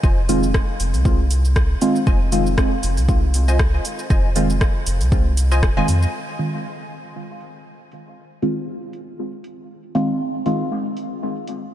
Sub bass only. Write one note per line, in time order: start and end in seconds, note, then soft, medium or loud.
0.03 0.61 F1 loud
0.80 0.95 F1 loud
0.94 1.76 C2 medium
2.07 2.65 F1 loud
2.83 2.99 F1 loud
2.97 3.79 C2 medium
4.10 4.68 F1 loud
4.86 5.02 F1 loud
5.01 5.62 C2 medium
5.63 5.81 D#1 medium
5.88 6.06 F2 medium